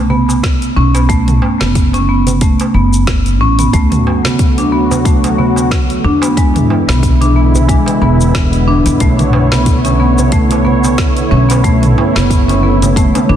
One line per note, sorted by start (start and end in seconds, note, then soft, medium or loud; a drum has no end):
0.00 0.71 B1 medium
0.10 0.21 B3 medium
0.10 darbuka dum medium
0.28 darbuka ka medium
0.28 darbuka tek soft
0.28 shaker medium
0.43 kick loud
0.43 snare medium
0.43 closed hi-hat medium
0.43 shaker medium
0.62 closed hi-hat soft
0.62 shaker soft
0.76 1.37 B1 medium
0.76 0.93 C#4 loud
0.94 1.08 B3 medium
0.94 closed hi-hat soft
0.94 darbuka ka medium
0.94 darbuka tek medium
0.94 shaker medium
1.09 1.59 A3 loud
1.09 kick loud
1.09 closed hi-hat medium
1.09 shaker soft
1.28 closed hi-hat soft
1.28 mid tom medium
1.28 shaker soft
1.42 darbuka tek medium
1.60 2.53 F#1 medium
1.60 1.75 B3 medium
1.60 snare medium
1.60 darbuka dum medium
1.60 shaker medium
1.75 kick loud
1.75 closed hi-hat medium
1.75 shaker medium
1.93 2.07 C#4 medium
1.93 closed hi-hat soft
1.93 darbuka ka medium
1.93 shaker soft
2.09 2.26 B3 medium
2.27 closed hi-hat soft
2.27 darbuka dum medium
2.27 shaker medium
2.41 2.73 A3 medium
2.41 kick loud
2.41 closed hi-hat medium
2.41 shaker medium
2.60 closed hi-hat soft
2.60 darbuka tek medium
2.60 shaker soft
2.74 3.40 F#1 medium
2.74 2.85 B3 medium
2.93 shaker medium
3.07 kick loud
3.07 snare medium
3.07 closed hi-hat medium
3.07 shaker medium
3.26 closed hi-hat soft
3.26 shaker soft
3.40 3.66 A1 medium
3.40 3.57 C#4 medium
3.59 3.72 B3 medium
3.59 closed hi-hat soft
3.59 mid tom medium
3.59 shaker medium
3.73 5.98 D2 medium
3.73 13.36 D3 medium
3.73 6.34 F#3 medium
3.73 6.34 A3 medium
3.73 4.23 A3 medium
3.73 13.36 B3 medium
3.73 6.34 F#4 medium
3.73 kick loud
3.73 closed hi-hat medium
3.73 shaker medium
3.92 closed hi-hat soft
3.92 mid tom medium
3.92 shaker soft
4.07 darbuka ka soft
4.07 darbuka tek medium
4.25 4.39 B3 medium
4.25 snare medium
4.25 darbuka dum medium
4.25 shaker medium
4.39 kick loud
4.39 closed hi-hat medium
4.39 shaker medium
4.58 4.71 D4 medium
4.58 closed hi-hat soft
4.58 darbuka ka soft
4.58 shaker soft
4.72 4.90 B3 medium
4.91 darbuka ka soft
4.91 darbuka dum loud
4.91 shaker medium
5.05 5.37 A3 medium
5.05 kick loud
5.05 closed hi-hat medium
5.05 shaker medium
5.24 closed hi-hat soft
5.24 darbuka tek medium
5.24 shaker soft
5.38 5.49 B3 medium
5.38 darbuka dum medium
5.56 darbuka ka medium
5.56 darbuka tek soft
5.56 shaker medium
5.71 kick loud
5.71 snare medium
5.71 closed hi-hat medium
5.71 shaker medium
5.90 closed hi-hat soft
5.90 shaker soft
6.04 6.64 E2 medium
6.04 6.21 D4 loud
6.22 6.36 B3 medium
6.22 closed hi-hat soft
6.22 darbuka ka medium
6.22 darbuka tek medium
6.22 shaker medium
6.37 8.98 E3 medium
6.37 8.98 G#3 medium
6.37 6.87 G#3 medium
6.37 8.98 E4 medium
6.37 kick medium
6.37 closed hi-hat medium
6.37 shaker soft
6.56 closed hi-hat soft
6.56 mid tom medium
6.56 shaker soft
6.70 darbuka tek medium
6.88 7.80 B1 medium
6.88 7.02 B3 medium
6.88 snare medium
6.88 darbuka dum medium
6.88 shaker medium
7.03 kick loud
7.03 closed hi-hat medium
7.03 shaker medium
7.21 7.34 D4 medium
7.21 closed hi-hat soft
7.21 darbuka ka soft
7.21 shaker soft
7.36 7.53 B3 medium
7.55 darbuka dum medium
7.55 shaker medium
7.69 8.00 G#3 loud
7.69 kick loud
7.69 closed hi-hat medium
7.69 shaker soft
7.86 closed hi-hat soft
7.86 darbuka tek medium
7.86 shaker soft
8.01 8.79 E1 medium
8.01 8.12 B3 medium
8.21 shaker medium
8.35 kick loud
8.35 snare medium
8.35 closed hi-hat medium
8.35 shaker soft
8.53 closed hi-hat soft
8.53 shaker soft
8.68 8.84 D4 loud
8.86 8.97 E2 medium
8.86 8.99 B3 medium
8.86 closed hi-hat soft
8.86 mid tom medium
8.86 shaker medium
9.00 11.26 B1 medium
9.00 13.36 A3 medium
9.00 9.50 A3 loud
9.00 13.36 E4 medium
9.00 13.36 C#5 medium
9.00 kick medium
9.00 closed hi-hat medium
9.00 shaker medium
9.19 closed hi-hat soft
9.19 mid tom medium
9.19 shaker soft
9.33 darbuka ka soft
9.33 darbuka tek medium
9.52 9.66 B3 medium
9.52 snare medium
9.52 darbuka dum medium
9.52 shaker medium
9.66 kick medium
9.66 closed hi-hat medium
9.66 shaker soft
9.85 9.98 C#4 medium
9.85 closed hi-hat soft
9.85 darbuka ka medium
9.85 shaker soft
10.00 10.17 B3 medium
10.18 darbuka ka soft
10.18 darbuka dum medium
10.18 shaker medium
10.32 10.64 A3 medium
10.32 kick loud
10.32 closed hi-hat medium
10.32 shaker medium
10.51 closed hi-hat soft
10.51 darbuka tek medium
10.51 shaker soft
10.65 10.76 B3 medium
10.65 darbuka dum medium
10.84 darbuka ka medium
10.84 darbuka tek soft
10.84 shaker medium
10.98 kick medium
10.98 snare medium
10.98 closed hi-hat medium
10.98 shaker soft
11.17 closed hi-hat soft
11.17 shaker soft
11.31 11.92 B1 medium
11.31 11.48 C#4 loud
11.49 11.63 B3 medium
11.49 closed hi-hat soft
11.49 darbuka ka medium
11.49 darbuka tek medium
11.49 shaker medium
11.64 12.14 A3 medium
11.64 kick loud
11.64 closed hi-hat medium
11.64 shaker soft
11.83 closed hi-hat soft
11.83 mid tom medium
11.83 shaker soft
11.98 darbuka ka soft
11.98 darbuka tek medium
12.15 13.07 F#1 medium
12.15 12.30 B3 medium
12.15 snare medium
12.15 darbuka dum medium
12.15 shaker medium
12.30 kick loud
12.30 closed hi-hat medium
12.30 shaker medium
12.48 12.62 C#4 medium
12.48 closed hi-hat soft
12.48 darbuka ka medium
12.48 shaker soft
12.63 12.81 B3 medium
12.82 closed hi-hat soft
12.82 darbuka ka soft
12.82 darbuka dum medium
12.82 shaker medium
12.96 13.13 A3 medium
12.96 kick loud
12.96 closed hi-hat medium
12.96 high tom medium
12.96 shaker medium
13.15 closed hi-hat soft
13.15 high tom medium
13.15 darbuka tek medium
13.15 shaker soft
13.29 13.36 F#1 medium
13.29 13.36 D4 medium
13.29 mid tom medium